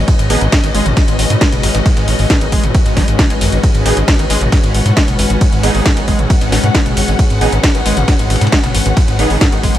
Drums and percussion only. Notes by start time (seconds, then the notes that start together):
0.08 kick, closed hi-hat, ride
0.19 closed hi-hat
0.30 snare, closed hi-hat, open hi-hat
0.41 closed hi-hat
0.52 kick, snare, closed hi-hat, ride
0.64 snare, closed hi-hat
0.75 closed hi-hat, open hi-hat
0.86 closed hi-hat
0.97 kick, snare, closed hi-hat, ride
1.08 closed hi-hat
1.19 closed hi-hat, open hi-hat
1.30 closed hi-hat
1.41 kick, snare, closed hi-hat, ride
1.52 closed hi-hat
1.63 snare, closed hi-hat, open hi-hat
1.75 snare, closed hi-hat
1.86 kick, snare, closed hi-hat, ride
1.97 snare, closed hi-hat
2.08 snare, closed hi-hat, open hi-hat
2.19 open hi-hat
2.30 kick, snare, closed hi-hat, ride
2.41 closed hi-hat
2.52 kick, closed hi-hat, open hi-hat
2.64 closed hi-hat
2.75 kick, closed hi-hat, ride
2.86 snare, closed hi-hat
2.97 kick, snare, closed hi-hat, open hi-hat
3.08 snare, closed hi-hat
3.19 kick, snare, closed hi-hat, ride
3.30 snare, closed hi-hat
3.41 open hi-hat
3.52 snare, closed hi-hat
3.63 kick, closed hi-hat, ride
3.75 closed hi-hat
3.86 snare, closed hi-hat, open hi-hat
3.97 closed hi-hat
4.08 kick, snare, closed hi-hat, ride
4.19 snare, closed hi-hat
4.30 closed hi-hat, open hi-hat
4.41 closed hi-hat
4.52 kick, snare, closed hi-hat, ride
4.64 closed hi-hat
4.74 closed hi-hat, open hi-hat
4.86 closed hi-hat
4.97 kick, snare, closed hi-hat, ride
5.08 closed hi-hat
5.19 closed hi-hat, open hi-hat
5.30 closed hi-hat
5.41 kick, closed hi-hat, ride
5.52 closed hi-hat
5.63 snare, closed hi-hat, open hi-hat
5.75 open hi-hat
5.86 kick, snare, closed hi-hat, ride
5.97 closed hi-hat
6.08 kick, closed hi-hat, open hi-hat
6.19 closed hi-hat
6.30 kick, closed hi-hat, ride
6.41 snare, closed hi-hat
6.52 snare, closed hi-hat, open hi-hat
6.64 snare, closed hi-hat
6.75 kick, snare, closed hi-hat, ride
6.86 snare, closed hi-hat
6.97 open hi-hat
7.08 snare, closed hi-hat
7.19 kick, closed hi-hat, ride
7.30 closed hi-hat
7.41 snare, closed hi-hat, open hi-hat
7.52 closed hi-hat
7.63 kick, snare, closed hi-hat, ride
7.75 snare, closed hi-hat
7.86 closed hi-hat, open hi-hat
7.97 closed hi-hat
8.08 kick, snare, closed hi-hat, ride
8.19 closed hi-hat
8.30 snare, closed hi-hat, open hi-hat
8.36 snare, closed hi-hat
8.41 snare, closed hi-hat
8.47 snare, closed hi-hat
8.52 kick, snare, closed hi-hat, ride
8.64 snare, closed hi-hat
8.75 closed hi-hat, open hi-hat
8.86 closed hi-hat
8.97 kick, snare, closed hi-hat, ride
9.08 closed hi-hat
9.19 closed hi-hat, open hi-hat
9.30 open hi-hat
9.41 kick, snare, closed hi-hat, ride
9.52 closed hi-hat
9.63 kick, closed hi-hat, open hi-hat
9.75 closed hi-hat